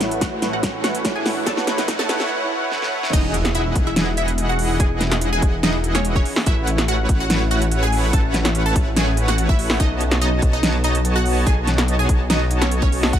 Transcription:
Already playing: A1 A3 E4 F#4 B4 C#5 E5 F#5, riser
0.01 snare, closed hi-hat
0.11 closed hi-hat
0.21 F#4 F#5, kick, snare, closed hi-hat
0.42 A1 A3 E4 B4 C#5 F#5, snare, closed hi-hat
0.53 F#4 F#5
0.63 kick, snare, closed hi-hat
0.84 F#4 F#5, snare, closed hi-hat
0.95 closed hi-hat
1.04 A3 E4 F#4 C#5, kick, snare, closed hi-hat
1.16 G#4 G#5
1.26 snare, open hi-hat
1.44 A1 A3 E4 F#4 A4 B4 C#5 F#5 A5, kick, snare, closed hi-hat
1.57 snare
1.67 snare, closed hi-hat
1.78 snare, closed hi-hat
1.88 kick, snare, closed hi-hat
1.99 A4 A5, snare
2.09 A1 A3 E4 B4 C#5 F#5, snare, closed hi-hat
2.20 snare
2.72 snare
2.82 snare
3.03 snare
3.13 E1 E3 D#4 E4 G#4 D#5, kick, closed hi-hat, crash, impact
3.34 E4, closed hi-hat
3.45 snare, closed hi-hat
3.55 D#4 E4 E5, closed hi-hat
3.76 E1 E3 E4 G#4 D#5 F#5, kick, closed hi-hat
3.87 E4 E5
3.96 E4, snare, closed hi-hat
4.17 D#4 E4 E5, closed hi-hat
4.28 closed hi-hat
4.38 G#4, closed hi-hat
4.49 F#4 F#5
4.59 E4, open hi-hat
4.80 E1 E3 E4 G#4 D#5 G#5, kick, closed hi-hat
5.01 E4, snare, closed hi-hat
5.11 snare, closed hi-hat
5.21 D#4, closed hi-hat
5.33 G#4 G#5
5.42 E1 E3 E4 G#4 D#5 F#5, kick, closed hi-hat
5.63 D#4 E4 D#5, snare, closed hi-hat
5.84 D#4, closed hi-hat
5.95 C#4 C#5, snare, closed hi-hat
6.05 G#4, closed hi-hat
6.16 C#4 C#5, kick
6.25 E4, open hi-hat
6.36 snare
6.46 A1 A3 E4 F#4 B4 C#5 E5 F#5, kick, closed hi-hat
6.67 E4, closed hi-hat
6.78 snare, closed hi-hat
6.88 C#4 F#4 F#5, closed hi-hat
7.09 A1 A3 F#4 F#5, kick, closed hi-hat
7.20 F#4 F#5
7.30 E4, snare, closed hi-hat
7.51 C#4 F#4 F#5, closed hi-hat
7.62 closed hi-hat
7.72 F#4, closed hi-hat
7.83 G#4 G#5
7.92 E4, open hi-hat
8.13 A1 A3 E4 F#4 A4 B4 C#5 F#5 A5, kick, closed hi-hat
8.34 E4, snare, closed hi-hat
8.45 snare, closed hi-hat
8.55 C#4, closed hi-hat
8.66 A4 A5
8.76 A1 A3 E4 F#4 B4 C#5 F#5, kick, closed hi-hat
8.97 E4 G#4 G#5, snare, closed hi-hat
9.17 C#4, closed hi-hat
9.28 F#4 F#5, snare, closed hi-hat
9.38 A4, closed hi-hat
9.49 E4 E5, kick
9.59 E5, open hi-hat
9.70 snare
9.80 B1 B3 D#4 F#4 A4 C#5 D#5 A5, kick, closed hi-hat
10.01 F#4, closed hi-hat
10.11 snare, closed hi-hat
10.21 D#4 D#5, closed hi-hat
10.42 B1 B3 F#4 A4 C#5 D#5 A5, kick, closed hi-hat
10.53 D#4 D#5
10.63 F#4, snare, closed hi-hat
10.84 D#4 D#5, closed hi-hat
10.95 closed hi-hat
11.05 A4, closed hi-hat
11.16 F#4 F#5
11.26 F#4, open hi-hat
11.46 B1 B3 F#4 G#4 A4 D#5 G#5 A5, kick, closed hi-hat
11.67 F#4, snare, closed hi-hat
11.78 snare, closed hi-hat
11.88 D#4, closed hi-hat
11.99 G#4 G#5
12.09 B1 B3 F#4 A4 C#5 D#5 A5, kick, closed hi-hat
12.30 D#4 F#4 D#5, snare, closed hi-hat
12.51 D#4, closed hi-hat
12.61 C#4 C#5, snare, closed hi-hat
12.72 A4, closed hi-hat
12.82 C#4 C#5, kick
12.92 F#4, open hi-hat
13.03 snare
13.13 F#1 F#4 F#5 G#5, kick, closed hi-hat

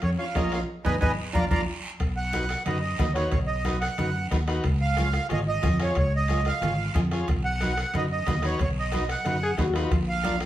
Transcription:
0.02 F2 C#5, bombo rim, high conga, high timbale, long guiro
0.18 C#4 F4 C#5 F5
0.35 A#1 C#4 F4 A#4 D#5, bombo low, bombo rim, high conga, high timbale, low timbale, short guiro
0.52 F5, bombo rim, high timbale, short guiro
0.85 G#1 B3 D#4 G#4 B4 D#5 G#5, bombo low, high conga, high timbale, long guiro
1.01 G#1 B3 D#4 G#4 B4 D#5 G#5, bombo low, high conga, high timbale, long guiro
1.33 A#1 D4 F4 A#4 D5 F5 A#5, bombo low, high conga, high timbale, long guiro
1.50 A#1 D4 F4 A#4 D5 F5 A#5, bombo low, high conga, high timbale, long guiro
2.00 B1, bombo low, bombo rim, high conga, high timbale, long guiro
2.17 F#5
2.33 D#4 F#4 B4, bombo rim, high conga, high timbale, short guiro
2.49 bombo rim, high timbale, short guiro
2.66 F#2 D#4 F#4 B4 D#5, bombo rim, high conga, low conga, high timbale, long guiro
2.81 D#5
2.99 D#2 D#4 F#4 B4, bombo low, bombo rim, high conga, low conga, high timbale, short guiro
3.14 D#4 F#4 B4 C#5, bombo rim, high timbale, short guiro
3.31 B1 C#5, bombo low, bombo rim, high conga, low conga, high timbale, long guiro
3.47 D#5
3.65 D#4 F#4 B4, bombo rim, high conga, high timbale, short guiro
3.81 F#5, bombo rim, high timbale, short guiro
3.98 F#2 D#4 F#4 B4, bombo rim, high conga, low conga, high timbale, long guiro
4.31 D#2 D#4 F#4 B4, bombo low, bombo rim, high conga, high timbale, short guiro
4.48 D#4 F#4 B4, bombo rim, high timbale, short guiro
4.64 C#2, bombo low, bombo rim, high conga, high timbale, long guiro
4.81 F5
4.97 F4 G#4 C#5, bombo rim, high conga, high timbale, short guiro
5.13 bombo rim, high timbale, short guiro
5.29 G#1 F4 G#4 C#5 D#5, bombo rim, high conga, low conga, high timbale, long guiro
5.48 D#5
5.62 F2 F4 G#4 C#5, bombo low, bombo rim, high conga, low conga, high timbale, short guiro
5.79 F4 G#4 C#5, bombo rim, high timbale, short guiro
5.95 C#2 C#5, bombo low, bombo rim, high conga, high timbale, long guiro
6.16 D#5
6.28 F4 G#4 C#5, bombo rim, high conga, high timbale, short guiro
6.45 F5, bombo rim, high timbale, short guiro
6.61 G#1 F4 G#4 C#5, bombo rim, high conga, low conga, high timbale, long guiro
6.94 F2 F4 G#4 D#5, bombo low, bombo rim, high conga, low conga, high timbale, short guiro
7.11 F4 G#4 C#5, bombo rim, high timbale, short guiro
7.28 B1, bombo low, bombo rim, high conga, low conga, high timbale, long guiro
7.45 F#5
7.61 D#4 F#4 B4, bombo rim, high conga, high timbale, short guiro
7.77 bombo rim, high timbale, short guiro
7.94 F#2 D#4 F#4 B4 D#5, bombo rim, high conga, low conga, high timbale, long guiro
8.12 D#5
8.27 D#2 D#4 F#4 B4, bombo low, bombo rim, high conga, low conga, high timbale, low timbale, short guiro
8.42 D#4 F#4 B4 C#5, bombo rim, high timbale, short guiro
8.59 B1 C#5, bombo low, bombo rim, high conga, low conga, high timbale, long guiro
8.79 D#5
8.92 D#4 F#4 B4, bombo rim, high conga, high timbale, short guiro
9.09 F#5, bombo rim, high timbale, short guiro
9.25 F#2 D#4 F#4 B4, bombo rim, high conga, low conga, high timbale, long guiro
9.43 G#4
9.58 D#2 D#4 F#4 B4, bombo low, bombo rim, high conga, high timbale, low timbale, short guiro
9.74 D#4 F4 F#4 B4, bombo rim, high timbale, short guiro
9.91 A#1, bombo low, bombo rim, high conga, low conga, high timbale, long guiro
10.09 F5
10.24 D4 F4 A#4, bombo rim, high conga, high timbale, short guiro
10.40 bombo rim, high timbale, short guiro

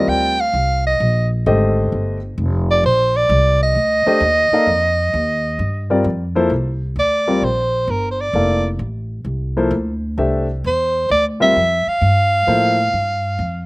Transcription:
Already playing: G3 C4 F4 A#4 D5 D#5
0.07 D2 G5
0.41 F5
0.53 C2
0.87 D#5
1.00 A#1
1.46 G#1 D3 A3 G4 C5 D#5
1.92 G1
2.38 F1
2.71 D5
2.84 A#1 C5
3.17 D5
3.29 C2
3.63 D#5
3.75 D2
4.06 A3 D4 G4 C5 D#5, muted upright bass stroke
4.20 D#2
4.51 A#3 D#4 A4 D5 F5, muted upright bass stroke
4.67 F2
5.14 D#2
5.59 G2
5.90 G3 C4 F4 A#4 D5
6.04 F2
6.35 F3 A#3 E4 A4 C5
6.50 C2
6.96 D2 D5
7.27 G3 C4 F4 A#4 D5
7.42 A#1 C5
7.87 G1 A#4
8.11 C5
8.21 D5
8.33 F1 A#3 E4 A4 D5 F5
8.79 A1
9.25 C2
9.57 F3 A#3 E4 A4 C5
9.71 D2
10.18 C2 A3 D4 G4 C5 E5
10.64 E2 C5
11.10 D2 D5
11.40 G3 C4 F4 A#4 E5
11.56 F2
11.87 F5, muted upright bass stroke
12.01 G2
12.47 A2 F3 A#3 E4 A4 C5
12.93 G2
13.39 F2

